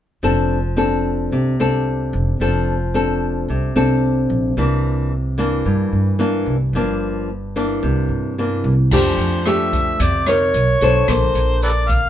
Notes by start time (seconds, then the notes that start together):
0.23 F1 F3 C4 D4 A4
0.77 C4 D4 A4
1.32 C2 C3
1.59 C2 C4 D4 A4
2.13 F1
2.40 F1 F3 C4 D4 A4
2.94 C4 D4 A4
3.48 C2 C3
3.76 C2 C4 D4 A4
4.30 A#1
4.57 C2 C3 E3 A#3 D4
5.38 E3 A#3 D4
5.65 G2
5.92 G2
6.19 E3 A#3 D4
6.46 C2
6.73 G1 G2 F3 A#3 D4
7.56 E3 A#3 D4
7.83 C2 C3
8.09 G2
8.38 E3 A#3 D4
8.64 C2
8.91 F2 F3 A3 D4 G4 C5, kick, crash
9.17 F2, closed hi-hat
9.46 A3 D4 G4 E5, cross-stick, closed hi-hat
9.73 kick, closed hi-hat
10.00 F2 C3 D5, kick, closed hi-hat
10.27 D#4 A#4 C#5, cross-stick, closed hi-hat
10.54 B1, closed hi-hat
10.81 B1 D4 A4 C5, closed hi-hat
11.08 A#1 A#3 C5, kick, cross-stick, closed hi-hat
11.34 A#1, closed hi-hat
11.62 A4 B4 D5, closed hi-hat
11.89 F5, kick, closed hi-hat